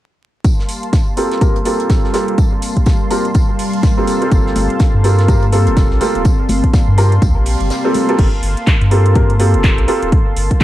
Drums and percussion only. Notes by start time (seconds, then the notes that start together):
0.44 kick, closed hi-hat, tambourine
0.59 snare
0.69 open hi-hat, tambourine
0.83 closed hi-hat
0.93 kick, snare, closed hi-hat, tambourine
1.17 open hi-hat, tambourine
1.31 snare, closed hi-hat
1.41 kick, closed hi-hat, tambourine
1.56 closed hi-hat
1.65 open hi-hat, tambourine
1.80 closed hi-hat
1.90 kick, snare, closed hi-hat, tambourine
2.04 snare
2.13 snare, open hi-hat, tambourine
2.28 closed hi-hat
2.38 kick, closed hi-hat, tambourine
2.62 open hi-hat, tambourine
2.77 kick, closed hi-hat
2.86 kick, snare, closed hi-hat, tambourine
3.11 open hi-hat, tambourine
3.25 closed hi-hat
3.34 kick, closed hi-hat, tambourine
3.59 open hi-hat
3.73 closed hi-hat
3.83 kick, snare, closed hi-hat, tambourine
4.07 open hi-hat, tambourine
4.22 closed hi-hat
4.32 kick, closed hi-hat, tambourine
4.46 snare
4.56 open hi-hat, tambourine, high conga
4.70 closed hi-hat
4.79 kick, snare, closed hi-hat, tambourine
5.04 open hi-hat, tambourine
5.19 snare, closed hi-hat
5.28 kick, closed hi-hat, tambourine
5.42 closed hi-hat
5.52 open hi-hat, tambourine
5.67 closed hi-hat
5.77 kick, snare, closed hi-hat, tambourine
5.91 snare
6.01 open hi-hat, tambourine, high conga
6.15 closed hi-hat
6.25 kick, closed hi-hat, tambourine
6.49 open hi-hat, tambourine, high conga
6.64 kick, closed hi-hat
6.73 kick, snare, closed hi-hat, tambourine
6.98 open hi-hat, tambourine
7.12 closed hi-hat
7.22 kick, closed hi-hat, tambourine
7.46 open hi-hat
7.60 closed hi-hat
7.70 snare, closed hi-hat, tambourine
7.94 open hi-hat, tambourine, high conga
8.09 closed hi-hat
8.19 kick, closed hi-hat, crash
8.43 open hi-hat
8.57 closed hi-hat
8.67 kick, clap, closed hi-hat
8.81 closed hi-hat
8.91 open hi-hat
9.06 closed hi-hat
9.15 kick, closed hi-hat
9.30 closed hi-hat
9.40 open hi-hat
9.54 closed hi-hat
9.64 kick, clap, closed hi-hat
9.78 closed hi-hat
9.88 open hi-hat
10.02 closed hi-hat
10.12 kick, closed hi-hat
10.36 open hi-hat
10.51 kick, closed hi-hat
10.61 kick, closed hi-hat